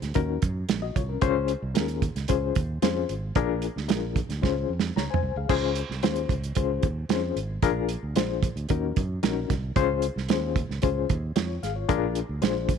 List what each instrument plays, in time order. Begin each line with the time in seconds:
0.02 fingered electric bass D2, snare, closed hi-hat
0.14 fingered electric bass D#2, reed electric piano C#4 D#4 F#4 A#4, kick, closed hi-hat
0.42 fingered electric bass F#2, kick, closed hi-hat
0.69 fingered electric bass A#1, snare, closed hi-hat
0.82 reed electric piano F#4 D#5
0.96 fingered electric bass C2, reed electric piano F4 C#5, kick, closed hi-hat
1.09 reed electric piano C#4 A#4
1.21 fingered electric bass C#2, reed electric piano C#4 F4 G#4 C5, kick, closed hi-hat
1.48 closed hi-hat
1.62 fingered electric bass C2
1.74 fingered electric bass D#2, reed electric piano C#4 F4 G#4 A#4, snare, closed hi-hat
1.88 closed hi-hat
2.02 kick, closed hi-hat
2.15 fingered electric bass C#2, snare, closed hi-hat
2.28 fingered electric bass C#2, reed electric piano C#4 F4 G#4 C5, kick, closed hi-hat
2.55 fingered electric bass D#2, kick, closed hi-hat
2.82 fingered electric bass F2, reed electric piano C#4 F4 G#4 C5, snare, closed hi-hat
3.09 fingered electric bass G#1, closed hi-hat
3.35 fingered electric bass A#1, reed electric piano D4 F4 G#4 A#4, kick, closed hi-hat
3.62 closed hi-hat
3.76 fingered electric bass D2, snare
3.88 fingered electric bass A#1, reed electric piano D4 F4 G#4 A#4, snare, closed hi-hat
4.16 kick, closed hi-hat
4.29 fingered electric bass D2, snare, closed hi-hat
4.42 fingered electric bass C#2, reed electric piano C#4 F4 G#4 C5, kick, snare
4.69 fingered electric bass F2
4.79 snare
4.96 fingered electric bass C#2, reed electric piano C#5 A#5, snare
5.10 reed electric piano C5 G#5, floor tom
5.23 fingered electric bass C2
5.36 fingered electric bass C#2, reed electric piano G#4 F5
5.49 fingered electric bass C#2, reed electric piano C#4 F4 G#4 C5, kick, crash
5.75 closed hi-hat
5.89 fingered electric bass C2, snare
6.03 fingered electric bass D#2, reed electric piano C#4 F4 G#4 C5, snare, closed hi-hat
6.16 closed hi-hat
6.29 fingered electric bass C#2, kick, closed hi-hat
6.44 closed hi-hat
6.55 fingered electric bass C#2, reed electric piano C#4 F4 G#4 C5, kick, closed hi-hat
6.83 fingered electric bass D#2, kick, closed hi-hat
7.09 fingered electric bass F2, reed electric piano C#4 F4 G#4 C5, snare, closed hi-hat
7.36 fingered electric bass G#1, closed hi-hat
7.62 fingered electric bass A#1, reed electric piano D4 F4 G#4 A#4, kick, closed hi-hat
7.89 closed hi-hat
8.03 fingered electric bass D2
8.16 fingered electric bass A#1, reed electric piano D4 F4 G#4 C5, snare, closed hi-hat
8.43 kick, closed hi-hat
8.56 fingered electric bass D2, closed hi-hat
8.69 fingered electric bass D#2, reed electric piano C#4 D#4 F#4 A#4, kick, closed hi-hat
8.96 fingered electric bass F#2, kick, closed hi-hat
9.23 fingered electric bass A#1, reed electric piano C#4 D#4 F#4 A#4, snare, closed hi-hat
9.50 fingered electric bass C2, kick, snare, closed hi-hat
9.76 fingered electric bass C#2, reed electric piano C#4 F4 G#4 C5, kick, closed hi-hat
10.02 closed hi-hat
10.16 fingered electric bass C2, snare
10.29 fingered electric bass D#2, reed electric piano C#4 F4 G#4 C5, snare, closed hi-hat
10.56 kick, closed hi-hat
10.69 fingered electric bass C#2, snare
10.82 fingered electric bass C#2, reed electric piano C#4 F4 G#4 C5, kick, closed hi-hat
11.09 fingered electric bass D#2, kick, closed hi-hat
11.36 fingered electric bass F2, reed electric piano F4 C#5, snare, closed hi-hat
11.63 fingered electric bass G#1, reed electric piano G#4 F5, snare, closed hi-hat
11.76 reed electric piano F4 C#5
11.89 fingered electric bass A#1, reed electric piano D4 F4 G#4 A#4, kick, closed hi-hat
12.15 closed hi-hat
12.29 fingered electric bass D2
12.42 fingered electric bass A#1, reed electric piano D4 F4 G#4 C5, snare, closed hi-hat
12.69 kick, closed hi-hat